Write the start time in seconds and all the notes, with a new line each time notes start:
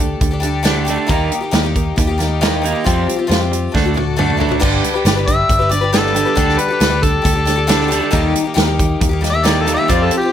Already playing: D2 D4 G4 A4
0.00 D3 A3
0.21 D2 D3 A3, kick, closed hi-hat
0.31 D4 G4 A4
0.40 G3 D4 G4 A4, closed hi-hat
0.45 D3 A3
0.63 D3 G3 D4 G4 A4, snare, closed hi-hat
0.67 A3
0.85 G3 D4 G4 A4, closed hi-hat
0.89 D3 A3
0.94 D4 G4 A4
1.07 D#2 D#3 G3 A#3 D#4 G4, kick, closed hi-hat
1.11 D#3
1.32 D#3 A#3, closed hi-hat
1.41 A#3 D#4 G4
1.51 D#2 D#3 G3 A#3 D#4 G4, snare, closed hi-hat
1.63 A#3 D#4 G4
1.76 D#3 A#3, kick, closed hi-hat
1.96 D#2 D#3 G3 A#3 D#4 G4, kick, closed hi-hat
2.07 A#3 D#4 G4
2.18 D#3 G3 A#3 D#4 G4, snare, closed hi-hat
2.41 D#3 G3 A#3 D#4 G4, snare, closed hi-hat
2.62 D#3 G3 A#3 D#4, closed hi-hat
2.66 G4
2.72 A#3 D#4 G4
2.84 F2 F3 G3 C4 F4 G4, kick, closed hi-hat
3.08 F3 G3, closed hi-hat
3.16 C4 F4 G4
3.27 F2 F3 G3 C4 F4 G4
3.31 snare, closed hi-hat
3.39 C4 F4 G4
3.52 F3 G3, closed hi-hat
3.72 D2 D3 A3 D4 F#4 A4, kick
3.76 snare
3.84 D4 F#4 A4
3.94 D3 A3 D4 F#4 A4, high tom
4.16 D3 A3 D4 F#4 A4, mid tom
4.30 mid tom
4.37 D3 A3 D4 F#4 A4
4.41 floor tom
4.49 D4 F#4 A4, floor tom
4.60 G1 G2 D3 G3 D4 G4 B4, kick, crash
4.84 G2 D3, closed hi-hat
4.94 G3 D4 G4 B4
5.05 G1 G2 D3 G3 D4 G4 B4, snare, closed hi-hat
5.16 G3 D4 G4 B4
5.27 G2 D3 E5, kick, closed hi-hat
5.49 G1 G2 D3, kick, closed hi-hat
5.59 G3 D4 G4 B4
5.69 G2 D3 G3 D4 G4 B4 D5, closed hi-hat
5.81 G3 D4 G4 B4
5.92 G2 D3 G3 D4 G4 A4 B4, snare, closed hi-hat
6.06 snare
6.15 G2 D3 G3 D4 G4 B4, closed hi-hat
6.25 G3 D4 G4 B4
6.35 D2 D3 G3 D4 G4 A4, kick, closed hi-hat
6.49 snare
6.58 D3 G3 B4, closed hi-hat
6.68 G4 A4
6.72 D4
6.80 D2 D3 G3 D4 G4 A4, snare, closed hi-hat
6.90 D4 G4 A4
7.03 D3 G3 A4, kick, closed hi-hat
7.22 D2 D3 G3 D4 G4 A4, kick, closed hi-hat
7.26 G3
7.33 D4 G4 A4
7.45 D3 G3 D4 G4 A4, snare, closed hi-hat
7.56 D4 G4 A4
7.67 D3 G3 D4 G4 A4, snare, closed hi-hat
7.81 snare
7.88 D3 G3 D4 G4, closed hi-hat
7.92 A4
8.00 D4 G4 A4
8.11 D#2 D#3 G3 A#3 D#4 G4, kick, closed hi-hat
8.35 D#3 G3, closed hi-hat
8.44 A#3 D#4 G4
8.54 D#2 D#3 G3 A#3 D#4 G4, closed hi-hat
8.58 snare
8.65 A#3 D#4 G4
8.79 D#3 G3, kick, closed hi-hat
9.01 D#2 D#3 G3, kick, closed hi-hat
9.09 A#3 D#4 G4
9.21 D#3 G3 A#3 D#4 G4, closed hi-hat
9.25 snare
9.30 G4 E5
9.35 A#3 D#4
9.44 D#3 G3 A#3 D#4 G4 D5, snare, closed hi-hat
9.61 A4
9.66 D#3 G3 A#3 D#4 G4, closed hi-hat
9.74 D#4 G4 E5
9.80 A#3
9.88 F2 F3 C4 F4 G4 D5, kick, closed hi-hat
10.03 A4
10.11 F3 C4, closed hi-hat
10.18 G4
10.23 C4 F4